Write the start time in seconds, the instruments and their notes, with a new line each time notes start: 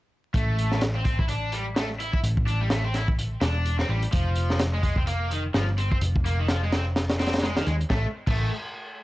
0.34 picked electric bass A1, overdriven electric guitar A3, kick, closed hi-hat
0.58 closed hi-hat
0.72 snare
0.81 snare, closed hi-hat
0.95 overdriven electric guitar C4
1.05 overdriven electric guitar C4, kick, closed hi-hat
1.19 overdriven electric guitar E4, kick
1.28 overdriven electric guitar D4, closed hi-hat
1.52 overdriven electric guitar G3, closed hi-hat
1.76 overdriven electric guitar A3, snare, closed hi-hat
2.00 overdriven electric guitar E4, closed hi-hat
2.13 overdriven electric guitar E4, kick
2.23 picked electric bass A1, closed hi-hat
2.37 kick
2.47 overdriven electric guitar D4, closed hi-hat
2.60 overdriven electric guitar G3
2.70 overdriven electric guitar A3, snare, closed hi-hat
2.84 overdriven electric guitar C4
2.94 overdriven electric guitar E4, snare, closed hi-hat
3.08 kick
3.19 closed hi-hat
3.41 picked electric bass E1, overdriven electric guitar D4, snare, closed hi-hat
3.65 closed hi-hat
3.79 overdriven electric guitar C4, snare
3.89 picked electric bass A1, overdriven electric guitar G3
4.02 closed hi-hat
4.12 picked electric bass F1, overdriven electric guitar F3, kick, closed hi-hat
4.35 closed hi-hat
4.50 snare
4.59 snare, closed hi-hat
4.74 overdriven electric guitar G#3
4.83 overdriven electric guitar G#3, kick, closed hi-hat
4.96 overdriven electric guitar C4, kick
5.07 overdriven electric guitar A#3, closed hi-hat
5.31 overdriven electric guitar D#3, closed hi-hat
5.54 picked electric bass G1, overdriven electric guitar F3, snare, closed hi-hat
5.78 overdriven electric guitar C4, closed hi-hat
5.92 overdriven electric guitar C4, kick
6.01 picked electric bass F1, closed hi-hat
6.16 kick
6.25 overdriven electric guitar A#3, closed hi-hat
6.39 overdriven electric guitar D#3
6.48 overdriven electric guitar F3, snare, closed hi-hat
6.63 overdriven electric guitar G#3
6.72 overdriven electric guitar C4, snare, closed hi-hat
6.96 snare, closed hi-hat
7.09 snare, closed hi-hat
7.19 overdriven electric guitar C4, snare, closed hi-hat
7.26 snare, closed hi-hat
7.33 snare, closed hi-hat
7.38 snare, closed hi-hat
7.43 overdriven electric guitar G#3, snare, closed hi-hat
7.57 overdriven electric guitar D#3, snare, closed hi-hat
7.66 picked electric bass D#2, overdriven electric guitar G#3, closed hi-hat
7.81 closed hi-hat
7.90 picked electric bass A1, overdriven electric guitar A3, kick, snare
8.27 picked electric bass A1, overdriven electric guitar A3, kick, crash